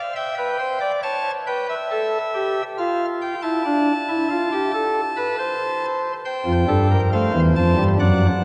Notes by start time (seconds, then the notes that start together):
Already playing: F5
0.16 E5 G5
0.38 B4
0.59 C5
0.81 D5
1.03 C#5 A5
1.47 B4 G5
1.69 E5
1.91 A4
2.34 G4
2.78 F4 F5
3.21 G5
3.42 E4 A5
3.65 D4
4.09 E4
4.30 F4
4.52 G4
4.74 A4
5.16 B4
5.39 C5
6.25 C5 G5
6.46 F2 F3
6.68 G2 G3 A4
6.91 A#4
7.13 A3 C5 F5
7.34 E2 E3
7.56 F2 F3 A5
7.78 G2 G3
8.00 F#2 F#3 D5 F#5